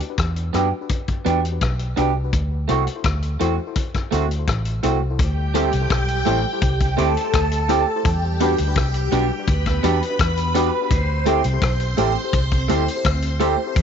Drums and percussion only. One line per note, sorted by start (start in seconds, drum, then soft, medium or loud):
0.00 closed hi-hat soft
0.18 kick loud
0.18 cross-stick loud
0.18 closed hi-hat medium
0.36 closed hi-hat soft
0.54 cross-stick medium
0.54 closed hi-hat medium
0.89 kick loud
0.89 closed hi-hat medium
1.08 kick medium
1.08 closed hi-hat soft
1.26 closed hi-hat medium
1.45 closed hi-hat soft
1.61 kick medium
1.61 cross-stick loud
1.61 closed hi-hat medium
1.79 closed hi-hat medium
1.97 closed hi-hat medium
2.33 kick loud
2.33 closed hi-hat medium
2.69 closed hi-hat medium
2.87 closed hi-hat soft
3.04 kick loud
3.04 cross-stick loud
3.04 closed hi-hat medium
3.22 closed hi-hat soft
3.41 closed hi-hat medium
3.76 kick medium
3.76 closed hi-hat medium
3.94 kick medium
3.94 cross-stick medium
3.94 closed hi-hat soft
4.12 closed hi-hat medium
4.31 closed hi-hat soft
4.47 kick medium
4.47 cross-stick loud
4.47 closed hi-hat medium
4.65 closed hi-hat medium
4.83 closed hi-hat medium
5.19 kick loud
5.19 closed hi-hat medium
5.55 closed hi-hat medium
5.73 closed hi-hat medium
5.90 kick loud
5.90 cross-stick loud
5.90 closed hi-hat medium
6.08 closed hi-hat medium
6.26 closed hi-hat medium
6.62 kick loud
6.62 closed hi-hat medium
6.80 kick medium
6.80 closed hi-hat medium
6.98 closed hi-hat medium
7.17 closed hi-hat medium
7.34 kick loud
7.34 cross-stick loud
7.34 closed hi-hat medium
7.52 closed hi-hat medium
7.69 closed hi-hat medium
8.05 kick loud
8.05 closed hi-hat medium
8.40 closed hi-hat medium
8.58 closed hi-hat medium
8.76 kick loud
8.76 cross-stick loud
8.76 closed hi-hat medium
8.94 closed hi-hat medium
9.12 closed hi-hat medium
9.47 kick loud
9.47 closed hi-hat medium
9.66 kick medium
9.66 cross-stick medium
9.66 closed hi-hat soft
9.84 closed hi-hat medium
10.03 closed hi-hat medium
10.19 kick loud
10.19 cross-stick loud
10.19 closed hi-hat medium
10.37 closed hi-hat medium
10.55 closed hi-hat medium
10.91 kick loud
10.91 closed hi-hat medium
11.26 closed hi-hat medium
11.44 closed hi-hat medium
11.62 kick loud
11.62 cross-stick loud
11.62 closed hi-hat medium
11.80 closed hi-hat soft
11.98 closed hi-hat medium
12.33 kick loud
12.33 closed hi-hat medium
12.51 kick medium
12.51 closed hi-hat soft
12.69 closed hi-hat medium
12.88 closed hi-hat medium
13.05 kick loud
13.05 cross-stick loud
13.05 closed hi-hat medium
13.22 closed hi-hat medium
13.40 closed hi-hat medium
13.76 kick loud
13.76 closed hi-hat medium